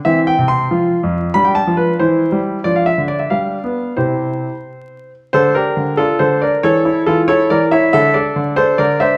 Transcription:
<<
  \new Staff \with { instrumentName = "Grand piano" } { \time 6/8 \key c \major \tempo 4. = 92 << { e''8 g''8 c'''2 | b''16 g''16 a''8 b'8 c''4. | d''16 f''16 e''8 d''16 e''16 f''4. | c''2~ c''8 r8 |
\key d \minor <a' c''>8 <g' bes'>4 <f' a'>8 <a' c''>8 <bes' d''>8 | <a' cis''>4 <f' a'>8 <a' cis''>8 <bes' d''>8 <cis'' e''>8 | <a' e''>8 <a' d''>4 <a' c''>8 <bes' d''>8 <c'' e''>8 | } \\ { c'4. f'4. | d'4. e'4. | d'4. d'4. | r2. |
r2. | r2. | r2. | } >> }
  \new Staff \with { instrumentName = "Grand piano" } { \clef bass \time 6/8 \key c \major e8. c8. f8. f,8. | g8. f8. e8. g8. | f8. d8. g8. b8. | <c e' g'>4. r4. |
\key d \minor d8 d'8 d8 d'8 d8 d'8 | e8 e'8 e8 e'8 e8 e'8 | d8 d'8 d8 d'8 d8 d'8 | }
>>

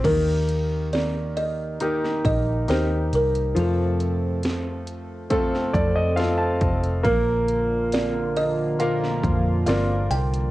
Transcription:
<<
  \new Staff \with { instrumentName = "Kalimba" } { \time 4/4 \key ees \lydian \tempo 4 = 68 bes'4 d''8 ees''4 ees''8 c''8 bes'8 | a'4. r2 r8 | bes'4 d''8 ees''4. f''8 g''8 | }
  \new Staff \with { instrumentName = "Grand piano" } { \time 4/4 \key ees \lydian << { r1 | r2 r8 d''16 ees''16 f''16 a''8. | r1 | } \\ { ees2 <ees' g' bes'>4 <ees' g' bes'>4 | f2 <c' f' a'>4 <c' f' a'>4 | bes2 <f' bes' f''>4 <f' bes' d''>4 | } >> }
  \new Staff \with { instrumentName = "Steel-string acoustic guitar" } { \time 4/4 \key ees \lydian <ees bes ees' g'>4 <ees bes ees' g'>4 <ees bes ees' g'>4 <ees bes ees' g'>4 | <f, c f a c' a'>4 <f a c' a'>4 <f, c f a c' a'>4 <f a c' a'>4 | <bes, f bes bes'>2 <bes, f bes bes'>4 <f bes d' bes'>4 | }
  \new Staff \with { instrumentName = "Analog synth pad" } { \clef bass \time 4/4 \key ees \lydian r1 | r1 | <d f bes f'>1 | }
  \new Staff \with { instrumentName = "Fingered electric bass" } { \clef bass \time 4/4 \key ees \lydian ees,2~ ees,8 bes,,8 ees,8 c,8 | f,2~ f,8 f,4 f,,8 | bes,,2~ bes,,8 f,8 g,,8 c,8 | }
  \new DrumStaff \with { instrumentName = "Drums" } \drummode { \time 4/4 <cymc hh bd>8 hh8 <hh sn>8 hh8 hh16 sn16 <hh bd>8 <hh sn>8 hh16 hh16 | hh8 hh8 <hh sn>8 hh8 <hh bd>16 sn16 <hh bd>8 <hh sn>8 <hh bd>16 hh16 | <hh bd>8 hh8 <hh sn>8 hh8 hh16 sn16 <hh bd>8 <hh sn>8 hh16 hh16 | }
>>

